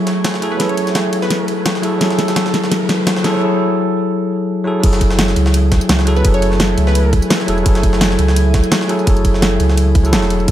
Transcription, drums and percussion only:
0.07 snare medium
0.07 closed hi-hat medium
0.07 ride medium
0.24 snare loud
0.24 snare medium
0.24 closed hi-hat medium
0.24 ride medium
0.24 tambourine soft
0.34 snare medium
0.42 closed hi-hat medium
0.42 ride medium
0.60 snare medium
0.60 closed hi-hat loud
0.60 ride medium
0.60 tambourine soft
0.69 closed hi-hat soft
0.77 closed hi-hat medium
0.77 ride medium
0.87 snare soft
0.87 tambourine medium
0.95 snare medium
0.95 snare loud
0.95 closed hi-hat medium
0.95 ride medium
0.95 tambourine soft
1.13 closed hi-hat medium
1.13 ride medium
1.22 snare soft
1.22 tambourine soft
1.30 snare medium
1.30 closed hi-hat medium
1.30 ride medium
1.30 tambourine medium
1.48 closed hi-hat medium
1.48 ride medium
1.66 snare loud
1.66 snare medium
1.66 closed hi-hat loud
1.66 ride medium
1.66 tambourine soft
1.75 snare soft
1.83 closed hi-hat medium
1.83 ride medium
2.01 snare medium
2.01 closed hi-hat medium
2.01 ride medium
2.01 tambourine soft
2.10 snare soft
2.10 closed hi-hat soft
2.19 snare medium
2.19 closed hi-hat medium
2.19 ride medium
2.28 snare medium
2.28 tambourine medium
2.36 snare medium
2.36 snare loud
2.36 closed hi-hat medium
2.36 ride medium
2.36 tambourine soft
2.46 snare medium
2.54 snare medium
2.54 closed hi-hat medium
2.54 ride medium
2.63 snare medium
2.63 tambourine soft
2.72 snare medium
2.72 closed hi-hat loud
2.72 ride medium
2.72 tambourine soft
2.89 snare medium
2.89 closed hi-hat medium
2.89 ride medium
3.07 snare medium
3.07 snare loud
3.07 closed hi-hat medium
3.07 ride medium
3.07 tambourine soft
3.16 snare medium
3.24 snare medium
3.24 closed hi-hat medium
3.24 ride medium
4.83 kick loud
4.83 closed hi-hat loud
4.83 crash loud
4.83 ride medium
4.83 tambourine medium
4.93 snare medium
4.93 closed hi-hat soft
4.93 tambourine soft
5.01 kick medium
5.01 closed hi-hat medium
5.01 ride medium
5.11 snare medium
5.19 snare loud
5.19 closed hi-hat medium
5.19 ride medium
5.19 tambourine medium
5.28 snare medium
5.36 closed hi-hat medium
5.36 ride medium
5.46 snare medium
5.54 closed hi-hat loud
5.54 ride medium
5.54 tambourine medium
5.72 kick loud
5.72 snare medium
5.72 closed hi-hat medium
5.72 ride medium
5.81 tambourine medium
5.89 snare loud
5.89 closed hi-hat loud
5.89 ride medium
5.89 tambourine medium
5.99 snare medium
6.07 closed hi-hat medium
6.07 ride medium
6.16 tambourine soft
6.25 kick loud
6.25 closed hi-hat loud
6.25 ride medium
6.25 tambourine soft
6.34 closed hi-hat soft
6.34 tambourine soft
6.42 closed hi-hat medium
6.42 ride medium
6.52 snare soft
6.60 snare loud
6.60 closed hi-hat medium
6.60 ride medium
6.60 tambourine soft
6.78 closed hi-hat medium
6.78 ride medium
6.87 snare soft
6.95 closed hi-hat loud
6.95 ride medium
6.95 tambourine medium
7.13 kick loud
7.13 closed hi-hat medium
7.13 ride medium
7.22 tambourine medium
7.30 snare loud
7.30 closed hi-hat loud
7.30 ride medium
7.30 tambourine medium
7.40 snare medium
7.48 closed hi-hat medium
7.48 ride medium
7.58 tambourine soft
7.66 kick loud
7.66 closed hi-hat loud
7.66 ride medium
7.66 tambourine medium
7.75 snare medium
7.75 closed hi-hat soft
7.75 tambourine soft
7.83 kick medium
7.83 closed hi-hat medium
7.83 ride medium
7.93 snare medium
8.01 snare loud
8.01 closed hi-hat medium
8.01 ride medium
8.01 tambourine soft
8.11 snare medium
8.19 closed hi-hat medium
8.19 ride medium
8.28 snare medium
8.36 closed hi-hat loud
8.36 ride medium
8.36 tambourine soft
8.54 kick loud
8.54 snare medium
8.54 closed hi-hat medium
8.54 ride medium
8.64 tambourine medium
8.72 snare loud
8.72 closed hi-hat medium
8.72 ride medium
8.72 tambourine soft
8.81 snare medium
8.89 closed hi-hat medium
8.89 ride medium
8.99 tambourine soft
9.07 kick loud
9.07 closed hi-hat medium
9.07 ride medium
9.07 tambourine soft
9.17 closed hi-hat soft
9.17 tambourine soft
9.25 kick medium
9.25 closed hi-hat medium
9.25 ride medium
9.25 tambourine soft
9.34 snare soft
9.42 snare loud
9.42 closed hi-hat medium
9.42 ride medium
9.42 tambourine soft
9.60 closed hi-hat medium
9.60 ride medium
9.69 snare soft
9.77 closed hi-hat medium
9.77 ride medium
9.77 tambourine soft
9.95 kick loud
9.95 closed hi-hat medium
9.95 ride medium
10.05 tambourine medium
10.13 snare loud
10.13 closed hi-hat medium
10.13 ride medium
10.13 tambourine soft
10.22 snare medium
10.30 closed hi-hat medium
10.30 ride medium
10.40 tambourine soft
10.48 kick loud
10.48 closed hi-hat medium
10.48 ride medium
10.48 tambourine soft

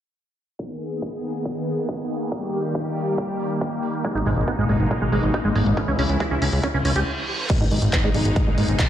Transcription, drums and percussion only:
0.59 kick loud
0.81 open hi-hat loud
0.91 closed hi-hat medium
1.02 kick loud
1.02 closed hi-hat medium
1.24 open hi-hat loud
1.35 closed hi-hat medium
1.45 kick loud
1.45 closed hi-hat medium
1.67 open hi-hat medium
1.78 closed hi-hat medium
1.89 kick loud
1.89 closed hi-hat medium
2.10 open hi-hat loud
2.21 closed hi-hat medium
2.32 kick loud
2.32 closed hi-hat medium
2.53 open hi-hat loud
2.64 closed hi-hat medium
2.75 kick loud
2.75 closed hi-hat medium
2.97 open hi-hat loud
3.07 open hi-hat medium
3.18 kick loud
3.18 closed hi-hat medium
3.40 open hi-hat loud
3.51 closed hi-hat medium
3.61 kick loud
3.61 closed hi-hat medium
3.83 open hi-hat loud
3.94 closed hi-hat medium
4.05 kick loud
4.05 closed hi-hat medium
4.26 open hi-hat loud
4.37 closed hi-hat medium
4.48 kick loud
4.48 closed hi-hat medium
4.69 open hi-hat loud
4.80 closed hi-hat medium
4.91 kick loud
4.91 closed hi-hat medium
5.12 open hi-hat loud
5.23 closed hi-hat medium
5.34 kick loud
5.34 closed hi-hat medium
5.56 open hi-hat loud
5.66 closed hi-hat medium
5.77 kick loud
5.77 closed hi-hat medium
5.99 open hi-hat loud
6.09 closed hi-hat medium
6.20 kick loud
6.20 closed hi-hat medium
6.42 open hi-hat loud
6.53 open hi-hat medium
6.63 kick loud
6.63 closed hi-hat medium
6.85 open hi-hat loud
6.96 closed hi-hat medium
7.50 kick loud
7.50 closed hi-hat medium
7.50 crash medium
7.71 open hi-hat loud
7.82 closed hi-hat medium
7.93 kick loud
7.93 clap loud
7.93 closed hi-hat medium
8.14 open hi-hat loud
8.25 closed hi-hat medium
8.36 kick loud
8.36 closed hi-hat medium
8.58 open hi-hat loud
8.68 closed hi-hat medium
8.79 kick loud
8.79 clap loud
8.79 closed hi-hat medium

